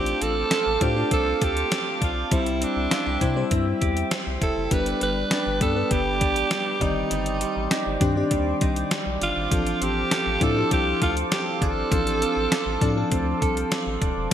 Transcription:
Already playing: A1 A3 C4 D4 F4 G4 C5 F5 A5 D6
0.06 closed hi-hat
0.22 A1 C4 A4, closed hi-hat
0.51 A4, snare, closed hi-hat
0.67 A1
0.81 A2 A3 D4 F4 G4 C5, kick, closed hi-hat
0.96 A3 D4 F4 C5
1.11 C2 C4 A4, kick, closed hi-hat
1.42 D2 G4 A4, kick, closed hi-hat
1.57 closed hi-hat
1.72 C4, snare, closed hi-hat
2.02 B1 D4 F4, kick, closed hi-hat
2.31 C2 G3 C4 E4 C5 E5 G5 E6, kick, closed hi-hat
2.46 closed hi-hat
2.61 C4 D4, closed hi-hat
2.77 C2
2.91 F4, snare, closed hi-hat
3.06 C2 G4
3.21 C3 G3 C4 E4 C5, kick, closed hi-hat
3.36 G3 C4 E4 C5
3.51 G2 C4, kick, closed hi-hat
3.81 E2 G4, kick, closed hi-hat
3.97 closed hi-hat
4.11 C4, snare, closed hi-hat
4.27 C2
4.41 F1 E4 A4, kick, closed hi-hat
4.57 F#1
4.71 G1 G3 B3 D4 A#4 B4 D5 D6, kick, closed hi-hat
4.79 B4
4.86 closed hi-hat
5.01 G1 G3 B4, closed hi-hat
5.31 D4, snare, closed hi-hat
5.47 G1
5.61 G2 G3 B3 D4 A4 B4, kick, closed hi-hat
5.75 G3 B3 D4 B4
5.91 G1 G3 G4, kick, closed hi-hat
6.21 A1 D4, kick, closed hi-hat
6.36 closed hi-hat
6.51 G3, snare, closed hi-hat
6.80 G1 D#3 G3 C4 D#4 G4 C5 D5, kick, closed hi-hat
7.11 G1 G3, closed hi-hat
7.26 closed hi-hat
7.41 G3, closed hi-hat
7.56 A1
7.71 D#4, snare, closed hi-hat
7.86 G1
8.00 G2 D#3 C4 D4 G4, kick, closed hi-hat
8.16 D#3 C4 G4 D5
8.31 D#2 G3, kick, closed hi-hat
8.61 C2 D#4, kick, closed hi-hat
8.76 closed hi-hat
8.91 G3, snare, closed hi-hat
9.06 B1
9.21 G1 D4 F4, closed hi-hat
9.37 G#1
9.51 A1 F3 C4 D4 A4 C5 F5 A5, kick, closed hi-hat
9.67 closed hi-hat
9.81 A1 C4 G4, closed hi-hat
10.11 A4, snare, closed hi-hat
10.26 A1
10.41 A2 F3 C4 D4 E4 A4, kick, closed hi-hat
10.56 F3 C4 D4 G4
10.71 C2 C4 G4, kick, closed hi-hat
11.02 D2 F4 A4, kick, closed hi-hat
11.17 closed hi-hat
11.32 C4 G4, snare, closed hi-hat
11.61 G#1 D4 A4, kick, closed hi-hat
11.91 A1 F3 C4 D4 A4, kick, closed hi-hat
12.07 closed hi-hat
12.22 C4, closed hi-hat
12.37 A1
12.52 A4, snare, closed hi-hat
12.66 A1
12.81 A2 F3 C4 D4 A4, kick, closed hi-hat
12.96 F3 C4 D4 A4
13.12 D2 C4, kick, closed hi-hat
13.42 C2 A4, kick, closed hi-hat
13.57 closed hi-hat
13.72 C4, snare, closed hi-hat
13.87 A1
14.01 D#1 D4, kick, closed hi-hat
14.17 E1

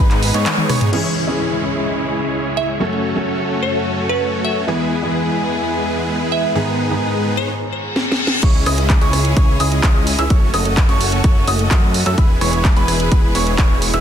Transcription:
Already playing: G#3 B3 D#4
0.00 G#1 G#3 B3 D#4 G#4 B4 B5
0.11 clap, closed hi-hat
0.23 open hi-hat
0.34 G#2 G#3 B3 D#4 G#4 C#5 C#6, closed hi-hat
0.46 clap, closed hi-hat, high tom
0.58 high tom
0.69 G#3 B3 D#4 G#4 C#5 C#6, cross-stick, open hi-hat, mid tom
0.81 closed hi-hat, mid tom
0.92 C#2 C#3 E3 G#3 C#4 E4 G#4 C#5, crash, downlifter
1.27 E3 G#3 C#4 G#4
2.57 E5
2.80 F#2 F#3 A3 C#4 F#4 A4 C#5
3.15 F#3 A3 C#4 A4
3.63 C#5
4.09 B4
4.45 E5
4.67 E2 E3 G#3 B3 E4 G#4 B4
5.02 E3 G#3 B3 G#4
6.32 E5
6.55 G#2 D#3 G#3 B3 D#4 G#4 B4
6.90 G#2 D#3 G#3 B3 G#4
7.37 C#5
7.49 reverse cymbal
7.96 snare
8.12 snare
8.27 snare
8.43 C#2 C#3 G#3 C#4 E4 G#4 C#5 C#6, kick, closed hi-hat, crash
8.66 C#2 G#3 C#4 E4 G#4 D#5 D#6, cross-stick, open hi-hat
8.78 closed hi-hat
8.90 kick, clap, closed hi-hat
9.01 C#2 G#3 C#4 E4 G#4 C#5 C#6, closed hi-hat
9.13 cross-stick, open hi-hat
9.25 closed hi-hat
9.37 C#2 G#3 C#4 E4 G#4 C#5 C#6, kick, closed hi-hat
9.60 C#2 G#3 C#4 E4 G#4 D#5 D#6, open hi-hat
9.72 closed hi-hat
9.83 C#2 G#3 C#4 G#4 D#6, kick, clap, closed hi-hat
10.07 open hi-hat
10.19 C#2 G#3 C#4 E4 G#4 E5 E6, closed hi-hat
10.30 F#1 A3 C#4 F#4 A4 C#5 C#6, kick, closed hi-hat
10.54 F#1 A3 C#4 F#4 A4 D#5 D#6, cross-stick, open hi-hat
10.65 closed hi-hat
10.77 kick, clap, closed hi-hat
10.89 F#1 A3 C#4 F#4 A4 C#5 C#6, closed hi-hat
11.01 open hi-hat
11.12 closed hi-hat
11.24 F#1 A3 C#4 F#4 A4 C#5 C#6, kick, closed hi-hat
11.47 F#1 A3 C#4 F#4 A4 D#5 D#6, open hi-hat
11.59 closed hi-hat
11.71 F#2 A3 C#4 F#4 A4 D#6, kick, clap, closed hi-hat
11.94 open hi-hat
12.06 F#2 A3 C#4 F#4 A4 E5 E6, closed hi-hat
12.18 E1 E3 G#3 B3 E4 G#4 B4 B5, kick, closed hi-hat
12.41 E1 G#3 B3 E4 G#4 C#5 C#6, cross-stick, open hi-hat
12.53 closed hi-hat
12.65 kick, clap, closed hi-hat
12.76 E1 G#3 B3 E4 G#4 B4 B5, closed hi-hat
12.88 cross-stick, open hi-hat
13.00 closed hi-hat
13.12 E1 B5, kick, closed hi-hat
13.35 E1 G#3 B3 E4 G#4 C#5 C#6, open hi-hat
13.47 closed hi-hat
13.58 E1 G#3 B3 E4 G#4 C#5 C#6, kick, clap, closed hi-hat
13.82 open hi-hat
13.94 E1 G#3 B3 E4 G#4 E5 E6, closed hi-hat

